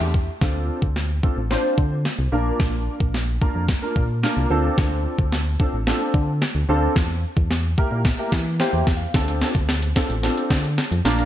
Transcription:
0.01 fm bass E2
0.14 kick
0.41 fm bass D2, grand piano C4 D4 F4 A4, kick, snare
0.82 fm bass D2, kick
0.96 snare
1.23 grand piano C4 D4 F4 A4, kick
1.37 fm bass A1
1.50 grand piano C4 D4 F4 C5, snare
1.78 fm bass D3, kick
2.05 snare
2.19 fm bass C2
2.32 fm bass A#1, grand piano A#3 D4 F4 A#4
2.60 fm bass A#1, kick, snare
3.00 fm bass A#1, kick
3.14 snare
3.41 grand piano A#3 D4 F4 A#4, kick
3.55 fm bass F2
3.69 kick, snare
3.82 grand piano A#3 D4 F4 A#4
3.96 fm bass A#2, kick
4.23 grand piano A#3 D4 F4 A#4, snare
4.37 fm bass C2
4.50 fm bass D2, grand piano C4 D4 F4 A4
4.78 fm bass D2, kick, snare
5.19 fm bass D2, kick
5.32 snare
5.60 grand piano C4 D4 F4 A4, kick
5.73 fm bass A1
5.87 grand piano C4 D4 F4 A4, snare
6.14 fm bass D3, kick
6.42 snare
6.55 fm bass D2
6.69 fm bass D2, grand piano C4 D4 F4 A4
6.96 fm bass E2, kick, snare
7.37 fm bass E2, kick
7.51 snare
7.78 grand piano A#3 E4 G4 A#4, kick
7.92 fm bass A#2
8.05 kick, snare
8.18 grand piano A#3 E4 G4 A#4
8.32 fm bass E3, kick, snare
8.60 grand piano A#3 E4 G4 C5 G5, snare
8.73 fm bass E2
8.87 fm bass E2, kick, snare
8.96 grand piano F5
9.14 fm bass D2, grand piano C4 D4 F4 A4, kick, snare, closed hi-hat
9.28 closed hi-hat
9.41 snare, closed hi-hat
9.55 fm bass D2, kick, closed hi-hat
9.69 snare, closed hi-hat
9.82 closed hi-hat
9.96 grand piano C4 D4 F4 A4, kick, snare, closed hi-hat
10.10 fm bass A1, closed hi-hat
10.23 grand piano C4 D4 F4 A4, snare, closed hi-hat
10.37 closed hi-hat
10.50 fm bass D3, kick, snare, closed hi-hat
10.64 closed hi-hat
10.78 snare, closed hi-hat
10.92 fm bass F2, closed hi-hat
11.05 fm bass A#1, grand piano A#3 D4 F4 A#4, snare, closed hi-hat
11.19 closed hi-hat

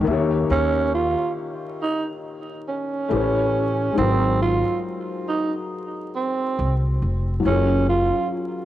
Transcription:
0.01 felt piano D#3 A#3
0.07 upright bass D#2, felt piano G4 E5
0.13 felt piano C#5
0.50 upright bass D#2, tenor saxophone C#4
0.95 tenor saxophone F4
1.82 tenor saxophone D#4
2.68 tenor saxophone C#4
3.08 upright bass A1, felt piano A3 E4 G4
3.13 felt piano B4 C5
3.21 felt piano C#5
3.92 felt piano G#3 D#4
3.97 upright bass G#1, felt piano F#3 A#4, tenor saxophone C4
4.04 felt piano B4
4.10 felt piano C5
4.42 tenor saxophone F4
5.29 tenor saxophone D#4
6.16 tenor saxophone C4
6.59 upright bass C2
7.02 upright bass F1
7.40 felt piano F#3 C#4
7.45 upright bass F#1, tenor saxophone C#4, felt piano F4 G#4
7.52 felt piano A#4
7.89 tenor saxophone F4

